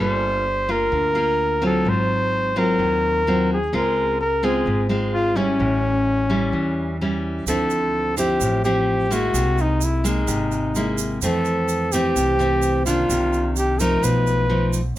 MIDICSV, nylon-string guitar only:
0, 0, Header, 1, 2, 480
1, 0, Start_track
1, 0, Tempo, 468384
1, 1897, Time_signature, 4, 2, 24, 8
1, 15355, End_track
2, 0, Start_track
2, 0, Title_t, "Nylon-string guitar"
2, 0, Program_c, 0, 24
2, 0, Note_on_c, 0, 55, 52
2, 0, Note_on_c, 0, 58, 54
2, 0, Note_on_c, 0, 65, 49
2, 0, Note_on_c, 0, 69, 49
2, 455, Note_off_c, 0, 58, 0
2, 458, Note_off_c, 0, 65, 0
2, 460, Note_off_c, 0, 69, 0
2, 702, Note_on_c, 0, 58, 53
2, 706, Note_on_c, 0, 65, 61
2, 915, Note_off_c, 0, 55, 0
2, 943, Note_on_c, 0, 50, 46
2, 1141, Note_off_c, 0, 58, 0
2, 1142, Note_off_c, 0, 65, 0
2, 1178, Note_on_c, 0, 58, 59
2, 1182, Note_on_c, 0, 65, 55
2, 1619, Note_off_c, 0, 58, 0
2, 1620, Note_off_c, 0, 65, 0
2, 1657, Note_on_c, 0, 54, 57
2, 1661, Note_on_c, 0, 60, 53
2, 1666, Note_on_c, 0, 65, 59
2, 1876, Note_off_c, 0, 50, 0
2, 1910, Note_on_c, 0, 44, 51
2, 2578, Note_off_c, 0, 54, 0
2, 2580, Note_off_c, 0, 60, 0
2, 2583, Note_off_c, 0, 65, 0
2, 2622, Note_on_c, 0, 54, 56
2, 2626, Note_on_c, 0, 60, 51
2, 2629, Note_on_c, 0, 65, 69
2, 2839, Note_off_c, 0, 44, 0
2, 2859, Note_on_c, 0, 51, 49
2, 3301, Note_off_c, 0, 54, 0
2, 3302, Note_off_c, 0, 60, 0
2, 3304, Note_off_c, 0, 65, 0
2, 3353, Note_on_c, 0, 54, 53
2, 3361, Note_on_c, 0, 60, 54
2, 3361, Note_on_c, 0, 65, 60
2, 3654, Note_off_c, 0, 54, 0
2, 3657, Note_off_c, 0, 65, 0
2, 3658, Note_off_c, 0, 60, 0
2, 3794, Note_off_c, 0, 51, 0
2, 3822, Note_on_c, 0, 49, 54
2, 3825, Note_on_c, 0, 56, 54
2, 3827, Note_on_c, 0, 60, 49
2, 3832, Note_on_c, 0, 65, 58
2, 4297, Note_off_c, 0, 56, 0
2, 4299, Note_off_c, 0, 60, 0
2, 4301, Note_off_c, 0, 65, 0
2, 4538, Note_on_c, 0, 56, 57
2, 4542, Note_on_c, 0, 60, 60
2, 4546, Note_on_c, 0, 65, 61
2, 4755, Note_off_c, 0, 49, 0
2, 4786, Note_on_c, 0, 44, 51
2, 4979, Note_off_c, 0, 56, 0
2, 4980, Note_off_c, 0, 60, 0
2, 4983, Note_off_c, 0, 65, 0
2, 5015, Note_on_c, 0, 56, 54
2, 5021, Note_on_c, 0, 60, 56
2, 5026, Note_on_c, 0, 65, 58
2, 5457, Note_off_c, 0, 56, 0
2, 5461, Note_off_c, 0, 60, 0
2, 5461, Note_off_c, 0, 65, 0
2, 5488, Note_on_c, 0, 55, 52
2, 5496, Note_on_c, 0, 61, 59
2, 5504, Note_on_c, 0, 64, 62
2, 5717, Note_off_c, 0, 44, 0
2, 5737, Note_on_c, 0, 45, 53
2, 6414, Note_off_c, 0, 55, 0
2, 6418, Note_off_c, 0, 61, 0
2, 6422, Note_off_c, 0, 64, 0
2, 6452, Note_on_c, 0, 55, 58
2, 6456, Note_on_c, 0, 61, 51
2, 6463, Note_on_c, 0, 64, 64
2, 6673, Note_off_c, 0, 45, 0
2, 6695, Note_on_c, 0, 52, 50
2, 7136, Note_off_c, 0, 55, 0
2, 7138, Note_off_c, 0, 61, 0
2, 7141, Note_off_c, 0, 64, 0
2, 7188, Note_on_c, 0, 55, 51
2, 7189, Note_on_c, 0, 61, 45
2, 7196, Note_on_c, 0, 64, 55
2, 7624, Note_off_c, 0, 55, 0
2, 7624, Note_off_c, 0, 61, 0
2, 7628, Note_off_c, 0, 64, 0
2, 7632, Note_off_c, 0, 52, 0
2, 7662, Note_on_c, 0, 50, 54
2, 7664, Note_on_c, 0, 53, 46
2, 7664, Note_on_c, 0, 60, 52
2, 7667, Note_on_c, 0, 64, 62
2, 8340, Note_off_c, 0, 53, 0
2, 8343, Note_off_c, 0, 60, 0
2, 8343, Note_off_c, 0, 64, 0
2, 8373, Note_on_c, 0, 53, 57
2, 8382, Note_on_c, 0, 60, 53
2, 8384, Note_on_c, 0, 64, 59
2, 8596, Note_off_c, 0, 50, 0
2, 8628, Note_on_c, 0, 45, 49
2, 8816, Note_off_c, 0, 53, 0
2, 8821, Note_off_c, 0, 60, 0
2, 8822, Note_off_c, 0, 64, 0
2, 8865, Note_on_c, 0, 53, 54
2, 8868, Note_on_c, 0, 60, 56
2, 8869, Note_on_c, 0, 64, 59
2, 9303, Note_off_c, 0, 53, 0
2, 9304, Note_off_c, 0, 60, 0
2, 9304, Note_off_c, 0, 64, 0
2, 9330, Note_on_c, 0, 56, 53
2, 9335, Note_on_c, 0, 58, 59
2, 9338, Note_on_c, 0, 64, 57
2, 9559, Note_off_c, 0, 45, 0
2, 9578, Note_on_c, 0, 48, 51
2, 10255, Note_off_c, 0, 56, 0
2, 10258, Note_off_c, 0, 58, 0
2, 10259, Note_off_c, 0, 64, 0
2, 10289, Note_on_c, 0, 56, 58
2, 10295, Note_on_c, 0, 58, 63
2, 10514, Note_off_c, 0, 48, 0
2, 10528, Note_on_c, 0, 48, 52
2, 10975, Note_off_c, 0, 56, 0
2, 10978, Note_off_c, 0, 58, 0
2, 11024, Note_on_c, 0, 56, 50
2, 11028, Note_on_c, 0, 58, 55
2, 11033, Note_on_c, 0, 64, 53
2, 11464, Note_off_c, 0, 56, 0
2, 11464, Note_off_c, 0, 58, 0
2, 11465, Note_off_c, 0, 64, 0
2, 11469, Note_off_c, 0, 48, 0
2, 11503, Note_on_c, 0, 41, 52
2, 11510, Note_on_c, 0, 52, 50
2, 11513, Note_on_c, 0, 57, 51
2, 11517, Note_on_c, 0, 60, 60
2, 12186, Note_off_c, 0, 52, 0
2, 12187, Note_off_c, 0, 57, 0
2, 12189, Note_off_c, 0, 60, 0
2, 12229, Note_on_c, 0, 52, 60
2, 12236, Note_on_c, 0, 57, 52
2, 12236, Note_on_c, 0, 60, 63
2, 12436, Note_off_c, 0, 41, 0
2, 12461, Note_on_c, 0, 48, 51
2, 12666, Note_off_c, 0, 52, 0
2, 12668, Note_off_c, 0, 57, 0
2, 12669, Note_off_c, 0, 60, 0
2, 12696, Note_on_c, 0, 52, 57
2, 12701, Note_on_c, 0, 57, 53
2, 12708, Note_on_c, 0, 60, 63
2, 13139, Note_off_c, 0, 52, 0
2, 13142, Note_off_c, 0, 57, 0
2, 13144, Note_off_c, 0, 60, 0
2, 13179, Note_on_c, 0, 51, 57
2, 13187, Note_on_c, 0, 58, 52
2, 13195, Note_on_c, 0, 62, 66
2, 13396, Note_off_c, 0, 48, 0
2, 13429, Note_on_c, 0, 48, 53
2, 14100, Note_off_c, 0, 51, 0
2, 14104, Note_off_c, 0, 58, 0
2, 14109, Note_off_c, 0, 62, 0
2, 14142, Note_on_c, 0, 53, 57
2, 14151, Note_on_c, 0, 57, 61
2, 14151, Note_on_c, 0, 63, 62
2, 14359, Note_off_c, 0, 48, 0
2, 14376, Note_on_c, 0, 47, 48
2, 14823, Note_off_c, 0, 53, 0
2, 14824, Note_off_c, 0, 63, 0
2, 14826, Note_off_c, 0, 57, 0
2, 14854, Note_on_c, 0, 53, 54
2, 14859, Note_on_c, 0, 57, 49
2, 14867, Note_on_c, 0, 63, 53
2, 15166, Note_off_c, 0, 53, 0
2, 15168, Note_off_c, 0, 57, 0
2, 15172, Note_off_c, 0, 63, 0
2, 15313, Note_off_c, 0, 47, 0
2, 15355, End_track
0, 0, End_of_file